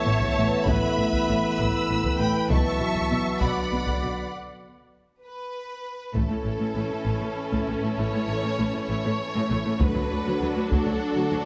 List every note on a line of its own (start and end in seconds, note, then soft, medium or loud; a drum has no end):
0.00 3.36 E3 medium
0.00 2.45 A3 medium
0.00 2.46 B3 medium
0.00 2.46 B4 medium
0.00 0.66 C#5 medium
0.00 0.67 E5 medium
0.00 0.67 A5 medium
0.06 0.15 A1 medium
0.06 0.14 A2 medium
0.21 taiko medium
0.37 0.45 A1 medium
0.37 0.45 A2 medium
0.67 0.76 A1 medium
0.67 0.76 A2 medium
0.67 2.50 B4 medium
0.67 1.57 E5 medium
0.67 1.58 B5 loud
0.67 taiko medium
0.98 1.06 A1 medium
0.98 1.06 A2 medium
1.12 taiko medium
1.28 1.36 A1 medium
1.28 1.37 A2 medium
1.58 1.66 A1 medium
1.58 1.68 A2 medium
1.58 2.19 B5 medium
1.58 2.20 E6 medium
1.58 taiko medium
1.88 1.96 A1 medium
1.88 1.97 A2 medium
2.04 taiko medium
2.18 2.26 A1 medium
2.18 2.28 A2 medium
2.18 2.50 G5 medium
2.18 2.50 B5 medium
2.49 2.57 B1 medium
2.49 2.58 B2 medium
2.49 4.28 F#3 medium
2.49 4.30 B3 medium
2.49 4.30 B4 medium
2.49 3.39 E5 medium
2.49 3.40 A5 medium
2.49 3.40 C#6 medium
2.49 taiko medium
2.80 2.88 B1 soft
2.80 2.89 B2 medium
2.96 taiko medium
3.10 3.18 B1 soft
3.10 3.19 B2 soft
3.41 3.49 B1 soft
3.41 3.50 B2 soft
3.41 4.33 D3 soft
3.41 4.32 D5 medium
3.41 4.33 F#5 medium
3.41 4.32 B5 medium
3.41 taiko medium
3.72 3.80 B1 soft
3.72 3.80 B2 soft
3.87 taiko medium
4.02 4.10 B1 soft
4.02 4.10 B2 soft
5.24 6.11 B4 medium
6.14 6.21 A1 soft
6.14 6.21 A2 medium
6.14 9.77 E3 soft
6.14 6.21 A3 medium
6.14 9.77 C#4 soft
6.14 9.78 E4 soft
6.14 7.98 A4 medium
6.14 9.78 A4 soft
6.14 taiko medium
6.30 6.36 A2 soft
6.30 6.36 A3 soft
6.45 6.51 A1 soft
6.45 6.51 A2 soft
6.45 6.51 A3 soft
6.60 6.66 A2 medium
6.60 6.66 A3 soft
6.75 6.81 A1 soft
6.75 6.81 A2 soft
6.75 6.82 A3 soft
6.90 6.97 A2 soft
6.90 6.97 A3 soft
7.05 7.11 A1 soft
7.05 7.12 A2 medium
7.05 7.13 A3 medium
7.21 7.28 A2 soft
7.21 7.28 A3 soft
7.52 7.59 A2 medium
7.52 7.58 A3 soft
7.52 taiko soft
7.67 7.73 A1 soft
7.67 7.74 A2 soft
7.67 7.74 A3 soft
7.82 7.89 A2 soft
7.82 7.88 A3 soft
7.97 8.03 A1 medium
7.97 8.04 A2 medium
7.97 8.04 A3 medium
7.97 8.87 C#5 medium
8.13 8.19 A2 soft
8.13 8.20 A3 soft
8.27 8.33 A1 soft
8.27 8.34 A2 soft
8.27 8.34 A3 soft
8.44 8.50 A2 medium
8.44 8.50 A3 medium
8.58 8.64 A1 soft
8.58 8.65 A2 soft
8.58 8.64 A3 soft
8.74 8.80 A2 soft
8.74 8.80 A3 soft
8.88 8.95 A1 medium
8.88 8.96 A2 medium
8.88 8.95 A3 medium
8.88 9.79 C#5 medium
9.05 9.11 A2 soft
9.05 9.11 A3 soft
9.35 9.42 A2 medium
9.35 9.41 A3 medium
9.50 9.56 A1 soft
9.50 9.57 A2 soft
9.50 9.56 A3 soft
9.65 9.72 A2 soft
9.65 9.71 A3 soft
9.79 9.87 D2 medium
9.79 9.85 F#3 medium
9.79 11.45 F#3 medium
9.79 11.45 D4 medium
9.79 11.45 F#4 medium
9.79 11.45 A4 medium
9.79 10.73 B4 medium
9.79 taiko medium
9.94 10.02 D2 soft
9.94 10.01 F#3 soft
10.10 10.17 D2 soft
10.10 10.18 D2 soft
10.10 10.16 F#3 soft
10.26 10.33 D2 medium
10.26 10.32 F#3 medium
10.41 10.48 D2 soft
10.41 10.48 F#3 soft
10.56 10.63 D2 soft
10.56 10.62 F#3 soft
10.71 10.78 D2 medium
10.71 10.78 F#3 medium
10.71 11.45 A4 medium
10.71 taiko medium
10.86 10.93 D2 soft
10.86 10.93 F#3 soft
11.17 11.23 D2 medium
11.17 11.23 F#3 medium
11.32 11.39 D2 soft
11.32 11.40 D2 soft
11.32 11.38 F#3 soft